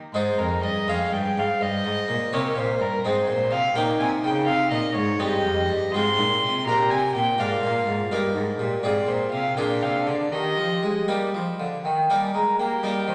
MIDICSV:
0, 0, Header, 1, 5, 480
1, 0, Start_track
1, 0, Key_signature, -4, "major"
1, 0, Tempo, 483481
1, 134, Time_signature, 6, 3, 24, 8
1, 5901, Key_signature, -3, "major"
1, 8770, Tempo, 504202
1, 11650, Tempo, 490196
1, 12912, End_track
2, 0, Start_track
2, 0, Title_t, "Violin"
2, 0, Program_c, 0, 40
2, 133, Note_on_c, 0, 72, 65
2, 377, Note_on_c, 0, 70, 57
2, 392, Note_off_c, 0, 72, 0
2, 617, Note_on_c, 0, 75, 61
2, 632, Note_off_c, 0, 70, 0
2, 882, Note_on_c, 0, 77, 55
2, 897, Note_off_c, 0, 75, 0
2, 1117, Note_on_c, 0, 79, 64
2, 1132, Note_off_c, 0, 77, 0
2, 1378, Note_on_c, 0, 77, 62
2, 1393, Note_off_c, 0, 79, 0
2, 1613, Note_on_c, 0, 75, 71
2, 1628, Note_off_c, 0, 77, 0
2, 2316, Note_on_c, 0, 73, 58
2, 2331, Note_off_c, 0, 75, 0
2, 2557, Note_on_c, 0, 72, 68
2, 2572, Note_off_c, 0, 73, 0
2, 2794, Note_on_c, 0, 70, 61
2, 2809, Note_off_c, 0, 72, 0
2, 3012, Note_off_c, 0, 70, 0
2, 3018, Note_on_c, 0, 72, 71
2, 3253, Note_off_c, 0, 72, 0
2, 3258, Note_on_c, 0, 72, 69
2, 3492, Note_on_c, 0, 77, 78
2, 3507, Note_off_c, 0, 72, 0
2, 3730, Note_on_c, 0, 79, 65
2, 3745, Note_off_c, 0, 77, 0
2, 3962, Note_off_c, 0, 79, 0
2, 3968, Note_on_c, 0, 80, 73
2, 4048, Note_off_c, 0, 80, 0
2, 4209, Note_on_c, 0, 79, 70
2, 4433, Note_off_c, 0, 79, 0
2, 4439, Note_on_c, 0, 77, 79
2, 4676, Note_off_c, 0, 77, 0
2, 4682, Note_on_c, 0, 75, 69
2, 4909, Note_off_c, 0, 75, 0
2, 4915, Note_on_c, 0, 73, 76
2, 5159, Note_on_c, 0, 75, 74
2, 5174, Note_off_c, 0, 73, 0
2, 5894, Note_off_c, 0, 75, 0
2, 5900, Note_on_c, 0, 84, 89
2, 6606, Note_off_c, 0, 84, 0
2, 6621, Note_on_c, 0, 82, 74
2, 6848, Note_on_c, 0, 80, 76
2, 6863, Note_off_c, 0, 82, 0
2, 7091, Note_off_c, 0, 80, 0
2, 7097, Note_on_c, 0, 79, 71
2, 7343, Note_on_c, 0, 77, 74
2, 7358, Note_off_c, 0, 79, 0
2, 8055, Note_off_c, 0, 77, 0
2, 8763, Note_on_c, 0, 74, 75
2, 9004, Note_on_c, 0, 72, 59
2, 9018, Note_off_c, 0, 74, 0
2, 9222, Note_off_c, 0, 72, 0
2, 9228, Note_on_c, 0, 77, 65
2, 9466, Note_off_c, 0, 77, 0
2, 9471, Note_on_c, 0, 79, 63
2, 9710, Note_on_c, 0, 77, 63
2, 9724, Note_off_c, 0, 79, 0
2, 9952, Note_on_c, 0, 74, 55
2, 9966, Note_off_c, 0, 77, 0
2, 10186, Note_on_c, 0, 75, 62
2, 10200, Note_off_c, 0, 74, 0
2, 10917, Note_off_c, 0, 75, 0
2, 12359, Note_on_c, 0, 67, 51
2, 12912, Note_off_c, 0, 67, 0
2, 12912, End_track
3, 0, Start_track
3, 0, Title_t, "Flute"
3, 0, Program_c, 1, 73
3, 881, Note_on_c, 1, 68, 54
3, 1593, Note_on_c, 1, 72, 62
3, 1607, Note_off_c, 1, 68, 0
3, 2310, Note_on_c, 1, 70, 52
3, 2325, Note_off_c, 1, 72, 0
3, 3015, Note_off_c, 1, 70, 0
3, 3020, Note_on_c, 1, 68, 66
3, 3720, Note_off_c, 1, 68, 0
3, 3730, Note_on_c, 1, 63, 66
3, 5153, Note_on_c, 1, 67, 71
3, 5168, Note_off_c, 1, 63, 0
3, 5895, Note_on_c, 1, 65, 56
3, 5910, Note_off_c, 1, 67, 0
3, 6121, Note_off_c, 1, 65, 0
3, 6127, Note_on_c, 1, 63, 55
3, 6187, Note_off_c, 1, 63, 0
3, 6365, Note_on_c, 1, 65, 60
3, 6610, Note_on_c, 1, 67, 64
3, 6625, Note_off_c, 1, 65, 0
3, 7082, Note_off_c, 1, 67, 0
3, 7327, Note_on_c, 1, 65, 59
3, 8007, Note_off_c, 1, 65, 0
3, 8044, Note_on_c, 1, 67, 54
3, 8266, Note_off_c, 1, 67, 0
3, 8272, Note_on_c, 1, 63, 48
3, 8331, Note_off_c, 1, 63, 0
3, 8516, Note_on_c, 1, 67, 54
3, 8756, Note_on_c, 1, 65, 62
3, 8771, Note_off_c, 1, 67, 0
3, 9462, Note_off_c, 1, 65, 0
3, 9468, Note_on_c, 1, 62, 51
3, 10175, Note_off_c, 1, 62, 0
3, 10181, Note_on_c, 1, 67, 50
3, 11149, Note_off_c, 1, 67, 0
3, 11389, Note_on_c, 1, 77, 57
3, 11635, Note_on_c, 1, 79, 61
3, 11649, Note_off_c, 1, 77, 0
3, 12004, Note_off_c, 1, 79, 0
3, 12010, Note_on_c, 1, 80, 66
3, 12116, Note_off_c, 1, 80, 0
3, 12122, Note_on_c, 1, 82, 74
3, 12364, Note_off_c, 1, 82, 0
3, 12369, Note_on_c, 1, 79, 71
3, 12841, Note_on_c, 1, 72, 63
3, 12856, Note_off_c, 1, 79, 0
3, 12912, Note_off_c, 1, 72, 0
3, 12912, End_track
4, 0, Start_track
4, 0, Title_t, "Harpsichord"
4, 0, Program_c, 2, 6
4, 141, Note_on_c, 2, 44, 41
4, 143, Note_on_c, 2, 56, 32
4, 146, Note_on_c, 2, 63, 30
4, 156, Note_on_c, 2, 68, 31
4, 360, Note_off_c, 2, 44, 0
4, 388, Note_on_c, 2, 41, 40
4, 606, Note_off_c, 2, 41, 0
4, 631, Note_on_c, 2, 43, 39
4, 835, Note_off_c, 2, 56, 0
4, 836, Note_off_c, 2, 63, 0
4, 842, Note_off_c, 2, 68, 0
4, 849, Note_off_c, 2, 43, 0
4, 874, Note_on_c, 2, 56, 34
4, 875, Note_on_c, 2, 41, 44
4, 888, Note_on_c, 2, 68, 34
4, 889, Note_on_c, 2, 61, 34
4, 1091, Note_off_c, 2, 41, 0
4, 1091, Note_off_c, 2, 56, 0
4, 1117, Note_on_c, 2, 43, 39
4, 1332, Note_off_c, 2, 43, 0
4, 1365, Note_on_c, 2, 44, 42
4, 1564, Note_off_c, 2, 61, 0
4, 1564, Note_off_c, 2, 68, 0
4, 1577, Note_off_c, 2, 44, 0
4, 1601, Note_on_c, 2, 43, 38
4, 1814, Note_off_c, 2, 43, 0
4, 1829, Note_on_c, 2, 44, 43
4, 2047, Note_off_c, 2, 44, 0
4, 2068, Note_on_c, 2, 46, 41
4, 2286, Note_off_c, 2, 46, 0
4, 2310, Note_on_c, 2, 48, 45
4, 2312, Note_on_c, 2, 58, 35
4, 2316, Note_on_c, 2, 61, 36
4, 2318, Note_on_c, 2, 63, 40
4, 2525, Note_off_c, 2, 48, 0
4, 2538, Note_on_c, 2, 46, 46
4, 2756, Note_off_c, 2, 46, 0
4, 2779, Note_on_c, 2, 43, 46
4, 2824, Note_off_c, 2, 58, 0
4, 2826, Note_off_c, 2, 61, 0
4, 2828, Note_off_c, 2, 63, 0
4, 2995, Note_off_c, 2, 43, 0
4, 3025, Note_on_c, 2, 44, 44
4, 3025, Note_on_c, 2, 60, 36
4, 3029, Note_on_c, 2, 56, 48
4, 3035, Note_on_c, 2, 63, 34
4, 3238, Note_off_c, 2, 44, 0
4, 3238, Note_off_c, 2, 60, 0
4, 3243, Note_off_c, 2, 63, 0
4, 3252, Note_on_c, 2, 46, 46
4, 3256, Note_off_c, 2, 56, 0
4, 3470, Note_off_c, 2, 46, 0
4, 3483, Note_on_c, 2, 48, 46
4, 3704, Note_off_c, 2, 48, 0
4, 3729, Note_on_c, 2, 46, 50
4, 3729, Note_on_c, 2, 58, 36
4, 3736, Note_on_c, 2, 61, 39
4, 3744, Note_on_c, 2, 63, 40
4, 3947, Note_off_c, 2, 46, 0
4, 3978, Note_on_c, 2, 48, 46
4, 4191, Note_off_c, 2, 48, 0
4, 4213, Note_on_c, 2, 49, 49
4, 4409, Note_off_c, 2, 58, 0
4, 4412, Note_off_c, 2, 61, 0
4, 4416, Note_off_c, 2, 63, 0
4, 4427, Note_off_c, 2, 49, 0
4, 4452, Note_on_c, 2, 48, 45
4, 4666, Note_off_c, 2, 48, 0
4, 4682, Note_on_c, 2, 46, 52
4, 4899, Note_off_c, 2, 46, 0
4, 4917, Note_on_c, 2, 44, 46
4, 5135, Note_off_c, 2, 44, 0
4, 5160, Note_on_c, 2, 43, 51
4, 5160, Note_on_c, 2, 56, 44
4, 5161, Note_on_c, 2, 60, 41
4, 5164, Note_on_c, 2, 63, 46
4, 5380, Note_off_c, 2, 43, 0
4, 5410, Note_on_c, 2, 41, 52
4, 5632, Note_off_c, 2, 41, 0
4, 5649, Note_on_c, 2, 43, 52
4, 5693, Note_off_c, 2, 56, 0
4, 5693, Note_off_c, 2, 60, 0
4, 5695, Note_off_c, 2, 63, 0
4, 5874, Note_off_c, 2, 43, 0
4, 5901, Note_on_c, 2, 56, 39
4, 5902, Note_on_c, 2, 44, 49
4, 5905, Note_on_c, 2, 60, 38
4, 5918, Note_on_c, 2, 65, 40
4, 6119, Note_off_c, 2, 44, 0
4, 6141, Note_on_c, 2, 46, 50
4, 6357, Note_off_c, 2, 46, 0
4, 6386, Note_on_c, 2, 48, 50
4, 6581, Note_off_c, 2, 56, 0
4, 6583, Note_off_c, 2, 60, 0
4, 6590, Note_off_c, 2, 65, 0
4, 6599, Note_off_c, 2, 48, 0
4, 6629, Note_on_c, 2, 46, 50
4, 6638, Note_on_c, 2, 62, 40
4, 6639, Note_on_c, 2, 70, 39
4, 6840, Note_off_c, 2, 46, 0
4, 6865, Note_on_c, 2, 48, 48
4, 7078, Note_off_c, 2, 48, 0
4, 7100, Note_on_c, 2, 46, 47
4, 7306, Note_off_c, 2, 62, 0
4, 7307, Note_off_c, 2, 70, 0
4, 7313, Note_off_c, 2, 46, 0
4, 7330, Note_on_c, 2, 58, 37
4, 7333, Note_on_c, 2, 44, 46
4, 7341, Note_on_c, 2, 62, 36
4, 7347, Note_on_c, 2, 70, 36
4, 7548, Note_off_c, 2, 44, 0
4, 7578, Note_on_c, 2, 46, 46
4, 7791, Note_off_c, 2, 46, 0
4, 7816, Note_on_c, 2, 44, 42
4, 8009, Note_off_c, 2, 58, 0
4, 8014, Note_off_c, 2, 62, 0
4, 8017, Note_off_c, 2, 70, 0
4, 8029, Note_off_c, 2, 44, 0
4, 8057, Note_on_c, 2, 58, 37
4, 8059, Note_on_c, 2, 43, 44
4, 8063, Note_on_c, 2, 63, 37
4, 8070, Note_on_c, 2, 70, 39
4, 8271, Note_off_c, 2, 43, 0
4, 8291, Note_on_c, 2, 44, 41
4, 8507, Note_off_c, 2, 44, 0
4, 8532, Note_on_c, 2, 46, 48
4, 8736, Note_off_c, 2, 58, 0
4, 8738, Note_off_c, 2, 63, 0
4, 8742, Note_off_c, 2, 70, 0
4, 8749, Note_off_c, 2, 46, 0
4, 8768, Note_on_c, 2, 44, 40
4, 8772, Note_on_c, 2, 60, 35
4, 8779, Note_on_c, 2, 65, 34
4, 8784, Note_on_c, 2, 68, 35
4, 8980, Note_off_c, 2, 44, 0
4, 8994, Note_on_c, 2, 46, 43
4, 9211, Note_off_c, 2, 46, 0
4, 9235, Note_on_c, 2, 48, 42
4, 9439, Note_off_c, 2, 60, 0
4, 9442, Note_off_c, 2, 65, 0
4, 9445, Note_off_c, 2, 68, 0
4, 9451, Note_off_c, 2, 48, 0
4, 9471, Note_on_c, 2, 58, 33
4, 9473, Note_on_c, 2, 46, 43
4, 9476, Note_on_c, 2, 62, 33
4, 9482, Note_on_c, 2, 68, 32
4, 9688, Note_off_c, 2, 46, 0
4, 9704, Note_on_c, 2, 48, 37
4, 9923, Note_off_c, 2, 48, 0
4, 9948, Note_on_c, 2, 50, 41
4, 10155, Note_off_c, 2, 58, 0
4, 10158, Note_off_c, 2, 62, 0
4, 10160, Note_off_c, 2, 68, 0
4, 10169, Note_off_c, 2, 50, 0
4, 10191, Note_on_c, 2, 51, 36
4, 10413, Note_off_c, 2, 51, 0
4, 10429, Note_on_c, 2, 53, 40
4, 10651, Note_off_c, 2, 53, 0
4, 10669, Note_on_c, 2, 56, 37
4, 10891, Note_off_c, 2, 56, 0
4, 10910, Note_on_c, 2, 58, 31
4, 10911, Note_on_c, 2, 55, 38
4, 10913, Note_on_c, 2, 63, 31
4, 10918, Note_on_c, 2, 67, 35
4, 11089, Note_off_c, 2, 58, 0
4, 11134, Note_off_c, 2, 55, 0
4, 11160, Note_on_c, 2, 53, 38
4, 11383, Note_off_c, 2, 53, 0
4, 11400, Note_on_c, 2, 50, 37
4, 11441, Note_off_c, 2, 63, 0
4, 11444, Note_off_c, 2, 67, 0
4, 11622, Note_off_c, 2, 50, 0
4, 11643, Note_on_c, 2, 51, 42
4, 11865, Note_off_c, 2, 51, 0
4, 11885, Note_on_c, 2, 58, 35
4, 11887, Note_on_c, 2, 55, 44
4, 11892, Note_on_c, 2, 63, 35
4, 11892, Note_on_c, 2, 70, 36
4, 12062, Note_off_c, 2, 58, 0
4, 12107, Note_off_c, 2, 55, 0
4, 12128, Note_on_c, 2, 56, 39
4, 12347, Note_off_c, 2, 56, 0
4, 12371, Note_on_c, 2, 58, 46
4, 12411, Note_off_c, 2, 63, 0
4, 12411, Note_off_c, 2, 70, 0
4, 12588, Note_off_c, 2, 58, 0
4, 12605, Note_on_c, 2, 55, 43
4, 12605, Note_on_c, 2, 58, 35
4, 12611, Note_on_c, 2, 63, 36
4, 12613, Note_on_c, 2, 70, 36
4, 12823, Note_off_c, 2, 55, 0
4, 12842, Note_on_c, 2, 51, 44
4, 12912, Note_off_c, 2, 51, 0
4, 12912, Note_off_c, 2, 58, 0
4, 12912, Note_off_c, 2, 63, 0
4, 12912, Note_off_c, 2, 70, 0
4, 12912, End_track
5, 0, Start_track
5, 0, Title_t, "Cello"
5, 0, Program_c, 3, 42
5, 132, Note_on_c, 3, 44, 48
5, 362, Note_off_c, 3, 44, 0
5, 378, Note_on_c, 3, 41, 48
5, 616, Note_off_c, 3, 41, 0
5, 622, Note_on_c, 3, 43, 45
5, 701, Note_off_c, 3, 43, 0
5, 865, Note_on_c, 3, 41, 47
5, 944, Note_off_c, 3, 41, 0
5, 1107, Note_on_c, 3, 43, 47
5, 1347, Note_off_c, 3, 43, 0
5, 1351, Note_on_c, 3, 44, 46
5, 1431, Note_off_c, 3, 44, 0
5, 1586, Note_on_c, 3, 43, 51
5, 1825, Note_off_c, 3, 43, 0
5, 1839, Note_on_c, 3, 44, 48
5, 1918, Note_off_c, 3, 44, 0
5, 2078, Note_on_c, 3, 46, 45
5, 2158, Note_off_c, 3, 46, 0
5, 2316, Note_on_c, 3, 48, 56
5, 2544, Note_off_c, 3, 48, 0
5, 2550, Note_on_c, 3, 46, 53
5, 2782, Note_off_c, 3, 46, 0
5, 2791, Note_on_c, 3, 43, 52
5, 2871, Note_off_c, 3, 43, 0
5, 3020, Note_on_c, 3, 44, 51
5, 3254, Note_off_c, 3, 44, 0
5, 3263, Note_on_c, 3, 46, 50
5, 3504, Note_on_c, 3, 48, 50
5, 3519, Note_off_c, 3, 46, 0
5, 3724, Note_off_c, 3, 48, 0
5, 3730, Note_on_c, 3, 46, 55
5, 3963, Note_off_c, 3, 46, 0
5, 3969, Note_on_c, 3, 48, 51
5, 4206, Note_off_c, 3, 48, 0
5, 4217, Note_on_c, 3, 49, 55
5, 4446, Note_on_c, 3, 48, 60
5, 4461, Note_off_c, 3, 49, 0
5, 4675, Note_off_c, 3, 48, 0
5, 4681, Note_on_c, 3, 46, 57
5, 4760, Note_off_c, 3, 46, 0
5, 4915, Note_on_c, 3, 44, 54
5, 5145, Note_off_c, 3, 44, 0
5, 5151, Note_on_c, 3, 43, 60
5, 5388, Note_off_c, 3, 43, 0
5, 5394, Note_on_c, 3, 41, 59
5, 5636, Note_on_c, 3, 43, 54
5, 5651, Note_off_c, 3, 41, 0
5, 5890, Note_off_c, 3, 43, 0
5, 5896, Note_on_c, 3, 44, 62
5, 6135, Note_on_c, 3, 46, 57
5, 6150, Note_off_c, 3, 44, 0
5, 6372, Note_off_c, 3, 46, 0
5, 6378, Note_on_c, 3, 48, 55
5, 6613, Note_on_c, 3, 46, 61
5, 6628, Note_off_c, 3, 48, 0
5, 6856, Note_off_c, 3, 46, 0
5, 6860, Note_on_c, 3, 48, 52
5, 6940, Note_off_c, 3, 48, 0
5, 7099, Note_on_c, 3, 46, 53
5, 7328, Note_off_c, 3, 46, 0
5, 7334, Note_on_c, 3, 44, 52
5, 7565, Note_off_c, 3, 44, 0
5, 7571, Note_on_c, 3, 46, 53
5, 7806, Note_off_c, 3, 46, 0
5, 7811, Note_on_c, 3, 44, 51
5, 8042, Note_off_c, 3, 44, 0
5, 8048, Note_on_c, 3, 43, 53
5, 8273, Note_off_c, 3, 43, 0
5, 8279, Note_on_c, 3, 44, 53
5, 8514, Note_off_c, 3, 44, 0
5, 8520, Note_on_c, 3, 46, 51
5, 8757, Note_off_c, 3, 46, 0
5, 8763, Note_on_c, 3, 44, 54
5, 8996, Note_off_c, 3, 44, 0
5, 9009, Note_on_c, 3, 46, 46
5, 9238, Note_off_c, 3, 46, 0
5, 9244, Note_on_c, 3, 48, 43
5, 9474, Note_off_c, 3, 48, 0
5, 9479, Note_on_c, 3, 46, 49
5, 9711, Note_on_c, 3, 48, 48
5, 9726, Note_off_c, 3, 46, 0
5, 9952, Note_on_c, 3, 50, 44
5, 9967, Note_off_c, 3, 48, 0
5, 10181, Note_off_c, 3, 50, 0
5, 10187, Note_on_c, 3, 51, 45
5, 10428, Note_off_c, 3, 51, 0
5, 10433, Note_on_c, 3, 53, 41
5, 10683, Note_on_c, 3, 56, 41
5, 10698, Note_off_c, 3, 53, 0
5, 10901, Note_off_c, 3, 56, 0
5, 10907, Note_on_c, 3, 55, 45
5, 11152, Note_off_c, 3, 55, 0
5, 11158, Note_on_c, 3, 53, 42
5, 11234, Note_off_c, 3, 53, 0
5, 11406, Note_on_c, 3, 50, 39
5, 11640, Note_off_c, 3, 50, 0
5, 11646, Note_on_c, 3, 51, 51
5, 11874, Note_off_c, 3, 51, 0
5, 11887, Note_on_c, 3, 55, 49
5, 12127, Note_off_c, 3, 55, 0
5, 12134, Note_on_c, 3, 56, 44
5, 12370, Note_off_c, 3, 56, 0
5, 12376, Note_on_c, 3, 58, 50
5, 12597, Note_off_c, 3, 58, 0
5, 12603, Note_on_c, 3, 55, 46
5, 12682, Note_off_c, 3, 55, 0
5, 12845, Note_on_c, 3, 51, 49
5, 12912, Note_off_c, 3, 51, 0
5, 12912, End_track
0, 0, End_of_file